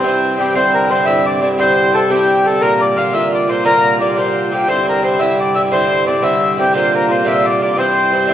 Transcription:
Already playing: C3 G3 C4 C5
0.03 G2 E3 C4 E4
0.38 G2 E3 C4 E4 G4
0.54 G2 C3 D3 G3 C4 E4 C5
0.75 A#4
0.89 G2 D3 C4 E4 C5
1.05 G2 D3 C4 E4 E5
1.26 D5
1.41 G2 D3 C4 E4 D5
1.58 G2 D3 C4 E4 C5
1.93 G2 D3 C4 E4 A4
2.09 G2 D3 C4 E4 G4
2.44 G2 D3 C4 E4 A4
2.61 A#2 D3 A#3 F4 A#4
2.81 D5
2.96 A#2 D3 A#3 F4 F5
3.13 A#2 D3 A#3 F4 E5
3.34 D5
3.48 A#2 D3 A#3 F4 C5
3.64 A#2 D3 A#3 F4 A#4
4.01 A#2 D3 A#3 F4 D5
4.16 A#2 D3 A#3 F4 C5
4.51 A#2 D3 A#3 F4 G4
4.67 G2 C3 D3 G3 C4 E4 C5
4.89 A#4
5.02 G2 D3 C4 E4 C5
5.19 G2 D3 C4 E4 E5
5.40 D5
5.55 G2 D3 C4 E4 E5
5.71 G2 D3 C4 E4 C5
6.06 G2 D3 C4 E4 D5
6.22 G2 D3 C4 E4 E5
6.57 G2 D3 C4 E4 G4
6.73 A#2 D3 A#3 F4 C5
6.95 A#4
7.09 A#2 D3 A#3 F4 C5
7.24 A#2 D3 A#3 F4 E5
7.45 D5
7.61 A#2 D3 A#3 F4 D5
7.76 G2 E3 C4 E4 C5
8.11 G2 E3 C4 E4
8.27 G2 E3 C4 E4

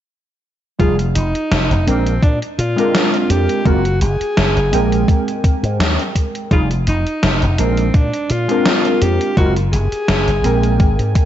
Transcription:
0.79 F1 G3 D#4 F4 G#4, kick, closed hi-hat
0.99 closed hi-hat
1.15 F1 D#4, closed hi-hat
1.35 closed hi-hat
1.51 F1, snare, closed hi-hat
1.71 F1, closed hi-hat
1.87 A#1 G#3 C4 D4 A#4, closed hi-hat
2.06 closed hi-hat
2.22 A#2 D4, kick, closed hi-hat
2.42 closed hi-hat
2.59 A#2 F4, closed hi-hat
2.76 G#3 C4 D4 A#4, closed hi-hat
2.95 snare, closed hi-hat
3.14 closed hi-hat
3.30 F2 G4, closed hi-hat
3.49 closed hi-hat
3.65 F#1 G#3 C4 F4 F#4 A#4, kick, closed hi-hat
3.85 closed hi-hat
4.01 F#1 G#4, closed hi-hat
4.21 closed hi-hat
4.37 F#1, snare, closed hi-hat
4.56 F#1, closed hi-hat
4.72 A#1 G#3 C4 A#4 G5, closed hi-hat
4.92 closed hi-hat
5.08 kick, closed hi-hat
5.28 closed hi-hat
5.44 kick, closed hi-hat
5.63 G#2, closed hi-hat
5.80 D#2, snare, closed hi-hat
5.99 closed hi-hat
6.15 kick, closed hi-hat
6.35 closed hi-hat
6.51 F1 G3 D#4 F4 G#4, kick, closed hi-hat
6.71 closed hi-hat
6.87 F1 D#4, closed hi-hat
7.07 closed hi-hat
7.23 F1, snare, closed hi-hat
7.42 F1, closed hi-hat
7.58 A#1 G#3 C4 D4 A#4, closed hi-hat
7.77 closed hi-hat
7.94 A#2 D4, kick, closed hi-hat
8.13 closed hi-hat
8.30 A#2 F4, closed hi-hat
8.48 G#3 C4 D4 A#4, closed hi-hat
8.66 snare, closed hi-hat
8.85 closed hi-hat
9.02 F2 G4, closed hi-hat
9.21 closed hi-hat
9.37 F#1 G#3 C4 F4 F#4 A#4, kick, closed hi-hat
9.56 closed hi-hat
9.72 F#1 G#4, closed hi-hat
9.92 closed hi-hat
10.08 F#1, snare, closed hi-hat
10.28 F#1, closed hi-hat
10.43 A#1 G#3 C4 A#4 G5, closed hi-hat
10.63 closed hi-hat
10.80 G#1, kick, closed hi-hat
10.99 G#2, closed hi-hat
11.15 kick, closed hi-hat

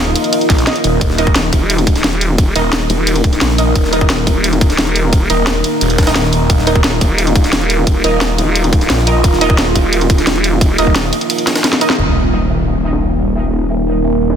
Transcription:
Already playing: D#1 A#3 D#4 F4 A#4 D#5
0.15 closed hi-hat, ride
0.24 closed hi-hat
0.33 closed hi-hat, ride
0.41 closed hi-hat
0.50 A#1, kick, snare, closed hi-hat, ride
0.58 snare, closed hi-hat
0.67 D#4 A#4 D#5, snare, closed hi-hat, ride
0.76 closed hi-hat, ride
0.84 D#1, closed hi-hat, ride
1.01 D#1 A#4, kick, closed hi-hat, ride
1.10 snare
1.18 D#4 A#4 D#5, closed hi-hat, ride
1.27 kick, ride
1.35 snare, closed hi-hat, ride
1.53 D#1, kick, closed hi-hat, ride
1.70 closed hi-hat, ride
1.78 closed hi-hat
1.87 kick, closed hi-hat, ride
1.96 snare, closed hi-hat
2.04 D#1, snare, closed hi-hat, ride
2.13 ride
2.21 closed hi-hat, ride
2.38 kick, closed hi-hat, ride
2.56 D#1 D#4 A#4 D#5, closed hi-hat, ride
2.73 snare, closed hi-hat, ride
2.90 D#1, closed hi-hat, ride
3.07 closed hi-hat, ride
3.16 closed hi-hat
3.24 kick, closed hi-hat, ride
3.33 snare, closed hi-hat
3.41 A#1, snare, closed hi-hat, ride
3.50 snare
3.58 D#4 A#4 D#5, closed hi-hat, ride
3.75 D#1, kick, closed hi-hat, ride
3.84 snare
3.93 D#4 A#4 D#5, closed hi-hat, ride
4.01 kick, ride
4.10 snare, closed hi-hat, ride
4.27 D#1, kick, closed hi-hat, ride
4.44 closed hi-hat, ride
4.53 closed hi-hat
4.61 kick, closed hi-hat, ride
4.70 snare, closed hi-hat
4.78 D#1, snare, closed hi-hat, ride
4.87 ride
4.96 closed hi-hat, ride
5.13 kick, closed hi-hat, ride
5.30 D#1 D#4 A#4 D#5, closed hi-hat, ride
5.47 snare, closed hi-hat, ride
5.64 closed hi-hat, ride
5.81 D#1, closed hi-hat, ride
5.90 closed hi-hat
5.98 kick, snare, closed hi-hat, ride
6.03 snare, ride
6.07 D#4 A#4 D#5, snare, closed hi-hat, ride
6.16 D#4 A#4 D#5, snare, closed hi-hat, ride
6.24 snare
6.33 closed hi-hat, ride
6.50 D#1 F4, kick, closed hi-hat, ride
6.58 snare
6.67 D#4 A#4 D#5, closed hi-hat, ride
6.76 kick, ride
6.84 snare, closed hi-hat, ride
7.01 D#1, kick, closed hi-hat, ride
7.18 closed hi-hat, ride
7.27 closed hi-hat
7.36 kick, closed hi-hat, ride
7.44 snare, closed hi-hat
7.53 D#1, snare, closed hi-hat, ride
7.61 ride
7.70 closed hi-hat, ride
7.87 kick, closed hi-hat, ride
8.04 D#1 D#4 A#4 D#5, closed hi-hat, ride
8.21 snare, closed hi-hat, ride
8.38 D#1, closed hi-hat, ride
8.55 closed hi-hat, ride
8.64 closed hi-hat
8.73 kick, closed hi-hat, ride
8.81 snare, closed hi-hat
8.90 A#1, snare, closed hi-hat, ride
8.98 snare
9.07 D#4 A#4 D#5, closed hi-hat, ride
9.24 D#1, kick, closed hi-hat, ride
9.33 snare
9.41 D#4 A#4 D#5, closed hi-hat, ride
9.50 kick, ride
9.58 snare, closed hi-hat, ride
9.75 D#1, kick, closed hi-hat, ride
9.93 closed hi-hat, ride
10.01 closed hi-hat
10.10 kick, closed hi-hat, ride
10.18 snare, closed hi-hat
10.27 D#1, snare, closed hi-hat, ride
10.36 ride
10.44 closed hi-hat, ride
10.61 kick, closed hi-hat, ride
10.78 D#1 D#4 A#4 D#5, closed hi-hat, ride
10.87 kick
10.96 snare, closed hi-hat, ride
11.13 closed hi-hat, ride
11.21 closed hi-hat
11.30 closed hi-hat, ride
11.38 closed hi-hat
11.47 snare, closed hi-hat, ride
11.56 snare, closed hi-hat, ride
11.64 snare, closed hi-hat, ride
11.73 snare, closed hi-hat
11.81 D#4 A#4 D#5, closed hi-hat, ride
11.90 snare
11.98 D#1 A#3 D#4 A#4, crash, ride, impact
12.07 snare
12.16 ride
12.24 ride
12.33 ride
12.50 ride
12.67 ride
12.84 ride
12.93 snare
13.01 ride
13.10 ride
13.18 ride
13.36 ride
13.53 ride
13.70 ride
13.87 ride
14.04 ride
14.21 ride
14.30 snare

